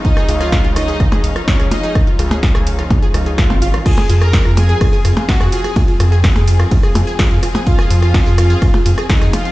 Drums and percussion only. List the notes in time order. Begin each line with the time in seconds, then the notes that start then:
0.05 kick, closed hi-hat
0.17 cross-stick, closed hi-hat
0.29 open hi-hat
0.41 cross-stick, closed hi-hat
0.52 kick, snare, closed hi-hat, percussion blips
0.64 closed hi-hat
0.76 cross-stick, open hi-hat
0.88 closed hi-hat
1.00 kick, cross-stick, closed hi-hat
1.12 closed hi-hat, percussion blips
1.24 open hi-hat
1.36 cross-stick, closed hi-hat
1.48 kick, snare, closed hi-hat
1.60 cross-stick, closed hi-hat
1.71 open hi-hat, percussion blips
1.83 closed hi-hat
1.95 kick, cross-stick, closed hi-hat
2.07 closed hi-hat
2.19 cross-stick, open hi-hat
2.31 closed hi-hat, percussion blips
2.43 kick, snare, closed hi-hat
2.55 cross-stick, closed hi-hat
2.67 open hi-hat
2.79 cross-stick, closed hi-hat
2.90 kick, closed hi-hat, percussion blips
3.02 closed hi-hat
3.14 cross-stick, open hi-hat
3.26 closed hi-hat
3.38 kick, cross-stick, snare, closed hi-hat
3.50 closed hi-hat, percussion blips
3.62 open hi-hat
3.74 cross-stick, closed hi-hat
3.86 kick, cross-stick, closed hi-hat, crash, ride
3.98 closed hi-hat, percussion blips
4.09 open hi-hat
4.21 cross-stick, closed hi-hat
4.33 kick, snare, closed hi-hat, ride
4.45 cross-stick, closed hi-hat
4.57 open hi-hat, percussion blips
4.69 closed hi-hat
4.81 kick, cross-stick, closed hi-hat, ride
4.93 closed hi-hat
5.05 cross-stick, open hi-hat
5.17 closed hi-hat, percussion blips
5.29 kick, snare, closed hi-hat, ride
5.41 cross-stick, closed hi-hat
5.52 open hi-hat
5.64 cross-stick, closed hi-hat
5.76 kick, closed hi-hat, ride, percussion blips
5.88 closed hi-hat
6.00 cross-stick, open hi-hat
6.12 closed hi-hat
6.24 kick, cross-stick, snare, closed hi-hat, ride
6.36 closed hi-hat, percussion blips
6.48 open hi-hat
6.60 cross-stick, closed hi-hat
6.71 kick, closed hi-hat, ride
6.83 cross-stick, closed hi-hat
6.95 open hi-hat, percussion blips
7.07 closed hi-hat
7.19 kick, cross-stick, snare, closed hi-hat, ride
7.31 closed hi-hat
7.43 cross-stick, open hi-hat
7.55 closed hi-hat, percussion blips
7.67 kick, closed hi-hat, ride
7.79 cross-stick, closed hi-hat
7.90 open hi-hat
8.02 cross-stick, closed hi-hat
8.14 kick, snare, closed hi-hat, ride, percussion blips
8.26 closed hi-hat
8.38 cross-stick, open hi-hat
8.50 closed hi-hat
8.62 kick, cross-stick, closed hi-hat, ride
8.74 closed hi-hat, percussion blips
8.86 open hi-hat
8.98 cross-stick, closed hi-hat
9.10 kick, snare, closed hi-hat, ride
9.21 cross-stick, closed hi-hat
9.33 open hi-hat, percussion blips
9.45 closed hi-hat